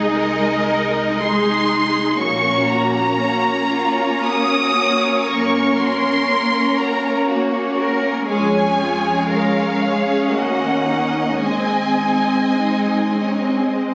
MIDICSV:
0, 0, Header, 1, 6, 480
1, 0, Start_track
1, 0, Tempo, 1032702
1, 564, Tempo, 983607
1, 1043, Time_signature, 3, 2, 24, 8
1, 1524, Tempo, 1048951
1, 2484, Tempo, 995025
1, 3444, Tempo, 1018676
1, 4884, Tempo, 1121495
1, 6431, End_track
2, 0, Start_track
2, 0, Title_t, "Violin section"
2, 0, Program_c, 0, 48
2, 0, Note_on_c, 0, 75, 71
2, 565, Note_off_c, 0, 75, 0
2, 565, Note_on_c, 0, 84, 75
2, 1042, Note_off_c, 0, 84, 0
2, 1043, Note_on_c, 0, 85, 73
2, 1277, Note_off_c, 0, 85, 0
2, 1280, Note_on_c, 0, 82, 76
2, 2011, Note_on_c, 0, 87, 89
2, 2012, Note_off_c, 0, 82, 0
2, 2452, Note_off_c, 0, 87, 0
2, 2458, Note_on_c, 0, 87, 47
2, 2487, Note_off_c, 0, 87, 0
2, 2488, Note_on_c, 0, 85, 64
2, 2727, Note_off_c, 0, 85, 0
2, 2732, Note_on_c, 0, 84, 80
2, 3206, Note_off_c, 0, 84, 0
2, 3210, Note_on_c, 0, 82, 63
2, 3448, Note_off_c, 0, 82, 0
2, 3924, Note_on_c, 0, 80, 77
2, 4378, Note_off_c, 0, 80, 0
2, 4405, Note_on_c, 0, 77, 59
2, 4885, Note_on_c, 0, 78, 62
2, 4887, Note_off_c, 0, 77, 0
2, 5355, Note_off_c, 0, 78, 0
2, 5356, Note_on_c, 0, 80, 67
2, 6307, Note_off_c, 0, 80, 0
2, 6431, End_track
3, 0, Start_track
3, 0, Title_t, "Cello section"
3, 0, Program_c, 1, 48
3, 0, Note_on_c, 1, 68, 52
3, 71, Note_off_c, 1, 68, 0
3, 80, Note_on_c, 1, 70, 57
3, 559, Note_on_c, 1, 68, 55
3, 564, Note_off_c, 1, 70, 0
3, 1035, Note_on_c, 1, 66, 57
3, 1039, Note_off_c, 1, 68, 0
3, 1511, Note_off_c, 1, 66, 0
3, 1522, Note_on_c, 1, 66, 54
3, 1759, Note_off_c, 1, 66, 0
3, 1763, Note_on_c, 1, 65, 53
3, 2007, Note_off_c, 1, 65, 0
3, 2007, Note_on_c, 1, 66, 53
3, 2481, Note_on_c, 1, 70, 64
3, 2482, Note_off_c, 1, 66, 0
3, 3423, Note_off_c, 1, 70, 0
3, 3443, Note_on_c, 1, 66, 56
3, 3676, Note_off_c, 1, 66, 0
3, 3680, Note_on_c, 1, 70, 58
3, 3919, Note_off_c, 1, 70, 0
3, 3921, Note_on_c, 1, 68, 56
3, 4386, Note_off_c, 1, 68, 0
3, 4393, Note_on_c, 1, 70, 49
3, 4630, Note_on_c, 1, 68, 49
3, 4634, Note_off_c, 1, 70, 0
3, 4881, Note_off_c, 1, 68, 0
3, 4882, Note_on_c, 1, 66, 46
3, 5113, Note_on_c, 1, 63, 45
3, 5115, Note_off_c, 1, 66, 0
3, 5349, Note_off_c, 1, 63, 0
3, 5354, Note_on_c, 1, 60, 40
3, 5795, Note_off_c, 1, 60, 0
3, 5842, Note_on_c, 1, 63, 48
3, 6068, Note_off_c, 1, 63, 0
3, 6087, Note_on_c, 1, 61, 44
3, 6323, Note_on_c, 1, 60, 45
3, 6325, Note_off_c, 1, 61, 0
3, 6431, Note_off_c, 1, 60, 0
3, 6431, End_track
4, 0, Start_track
4, 0, Title_t, "Violin section"
4, 0, Program_c, 2, 48
4, 0, Note_on_c, 2, 63, 53
4, 0, Note_on_c, 2, 68, 48
4, 546, Note_off_c, 2, 63, 0
4, 566, Note_off_c, 2, 68, 0
4, 576, Note_on_c, 2, 68, 52
4, 577, Note_on_c, 2, 63, 53
4, 1039, Note_off_c, 2, 63, 0
4, 1039, Note_off_c, 2, 68, 0
4, 1049, Note_on_c, 2, 73, 53
4, 1051, Note_on_c, 2, 58, 54
4, 1158, Note_off_c, 2, 58, 0
4, 1168, Note_on_c, 2, 61, 47
4, 1284, Note_off_c, 2, 61, 0
4, 1292, Note_on_c, 2, 66, 45
4, 1407, Note_off_c, 2, 66, 0
4, 1416, Note_on_c, 2, 61, 46
4, 1531, Note_off_c, 2, 61, 0
4, 1539, Note_on_c, 2, 58, 45
4, 1650, Note_off_c, 2, 58, 0
4, 1658, Note_on_c, 2, 61, 47
4, 1773, Note_off_c, 2, 61, 0
4, 1775, Note_on_c, 2, 66, 48
4, 1895, Note_off_c, 2, 66, 0
4, 1902, Note_on_c, 2, 61, 46
4, 2019, Note_off_c, 2, 61, 0
4, 2028, Note_on_c, 2, 58, 49
4, 2141, Note_off_c, 2, 58, 0
4, 2152, Note_on_c, 2, 61, 47
4, 2261, Note_off_c, 2, 61, 0
4, 2264, Note_on_c, 2, 66, 45
4, 2375, Note_off_c, 2, 66, 0
4, 2387, Note_on_c, 2, 61, 43
4, 2490, Note_on_c, 2, 58, 52
4, 2494, Note_off_c, 2, 61, 0
4, 2600, Note_off_c, 2, 58, 0
4, 2623, Note_on_c, 2, 61, 47
4, 2730, Note_on_c, 2, 66, 46
4, 2735, Note_off_c, 2, 61, 0
4, 2847, Note_off_c, 2, 66, 0
4, 2849, Note_on_c, 2, 61, 46
4, 2966, Note_off_c, 2, 61, 0
4, 2968, Note_on_c, 2, 58, 45
4, 3085, Note_off_c, 2, 58, 0
4, 3088, Note_on_c, 2, 61, 45
4, 3205, Note_off_c, 2, 61, 0
4, 3212, Note_on_c, 2, 66, 48
4, 3326, Note_on_c, 2, 61, 45
4, 3328, Note_off_c, 2, 66, 0
4, 3446, Note_off_c, 2, 61, 0
4, 3451, Note_on_c, 2, 58, 49
4, 3562, Note_on_c, 2, 61, 44
4, 3567, Note_off_c, 2, 58, 0
4, 3681, Note_off_c, 2, 61, 0
4, 3681, Note_on_c, 2, 66, 46
4, 3798, Note_on_c, 2, 61, 45
4, 3801, Note_off_c, 2, 66, 0
4, 3905, Note_off_c, 2, 73, 0
4, 3917, Note_on_c, 2, 56, 50
4, 3919, Note_off_c, 2, 61, 0
4, 3921, Note_on_c, 2, 73, 51
4, 4029, Note_off_c, 2, 56, 0
4, 4033, Note_on_c, 2, 61, 46
4, 4155, Note_off_c, 2, 61, 0
4, 4158, Note_on_c, 2, 65, 43
4, 4274, Note_on_c, 2, 68, 43
4, 4277, Note_off_c, 2, 65, 0
4, 4394, Note_off_c, 2, 68, 0
4, 4396, Note_on_c, 2, 65, 42
4, 4515, Note_off_c, 2, 65, 0
4, 4525, Note_on_c, 2, 61, 39
4, 4631, Note_on_c, 2, 56, 42
4, 4640, Note_off_c, 2, 61, 0
4, 4756, Note_off_c, 2, 56, 0
4, 4759, Note_on_c, 2, 61, 38
4, 4865, Note_off_c, 2, 73, 0
4, 4883, Note_off_c, 2, 61, 0
4, 4889, Note_on_c, 2, 75, 45
4, 4891, Note_on_c, 2, 58, 44
4, 4994, Note_off_c, 2, 58, 0
4, 5001, Note_on_c, 2, 61, 39
4, 5115, Note_on_c, 2, 63, 38
4, 5116, Note_off_c, 2, 61, 0
4, 5233, Note_off_c, 2, 63, 0
4, 5235, Note_on_c, 2, 61, 36
4, 5355, Note_off_c, 2, 61, 0
4, 5358, Note_on_c, 2, 56, 43
4, 5470, Note_off_c, 2, 56, 0
4, 5475, Note_on_c, 2, 60, 38
4, 5589, Note_on_c, 2, 63, 35
4, 5598, Note_off_c, 2, 60, 0
4, 5716, Note_on_c, 2, 60, 37
4, 5717, Note_off_c, 2, 63, 0
4, 5841, Note_off_c, 2, 60, 0
4, 5848, Note_on_c, 2, 56, 38
4, 5965, Note_on_c, 2, 60, 34
4, 5967, Note_off_c, 2, 56, 0
4, 6085, Note_off_c, 2, 60, 0
4, 6092, Note_on_c, 2, 63, 36
4, 6199, Note_on_c, 2, 60, 36
4, 6208, Note_off_c, 2, 63, 0
4, 6321, Note_off_c, 2, 60, 0
4, 6331, Note_on_c, 2, 56, 36
4, 6431, Note_off_c, 2, 56, 0
4, 6431, Note_off_c, 2, 75, 0
4, 6431, End_track
5, 0, Start_track
5, 0, Title_t, "Viola section"
5, 0, Program_c, 3, 48
5, 0, Note_on_c, 3, 56, 43
5, 0, Note_on_c, 3, 63, 46
5, 549, Note_off_c, 3, 63, 0
5, 566, Note_off_c, 3, 56, 0
5, 574, Note_on_c, 3, 56, 48
5, 574, Note_on_c, 3, 63, 49
5, 1038, Note_off_c, 3, 56, 0
5, 1038, Note_off_c, 3, 63, 0
5, 1049, Note_on_c, 3, 58, 46
5, 1052, Note_on_c, 3, 61, 48
5, 3905, Note_off_c, 3, 58, 0
5, 3906, Note_off_c, 3, 61, 0
5, 3929, Note_on_c, 3, 61, 44
5, 3931, Note_on_c, 3, 56, 46
5, 4882, Note_on_c, 3, 58, 43
5, 4888, Note_off_c, 3, 56, 0
5, 5341, Note_off_c, 3, 61, 0
5, 5352, Note_on_c, 3, 60, 39
5, 5353, Note_on_c, 3, 56, 39
5, 5354, Note_off_c, 3, 58, 0
5, 6431, Note_off_c, 3, 56, 0
5, 6431, Note_off_c, 3, 60, 0
5, 6431, End_track
6, 0, Start_track
6, 0, Title_t, "Double bass section"
6, 0, Program_c, 4, 48
6, 0, Note_on_c, 4, 36, 47
6, 1024, Note_off_c, 4, 36, 0
6, 1046, Note_on_c, 4, 34, 55
6, 1445, Note_off_c, 4, 34, 0
6, 2491, Note_on_c, 4, 42, 59
6, 2888, Note_off_c, 4, 42, 0
6, 3925, Note_on_c, 4, 41, 56
6, 4319, Note_off_c, 4, 41, 0
6, 4887, Note_on_c, 4, 39, 47
6, 5275, Note_off_c, 4, 39, 0
6, 5356, Note_on_c, 4, 32, 47
6, 5764, Note_off_c, 4, 32, 0
6, 6431, End_track
0, 0, End_of_file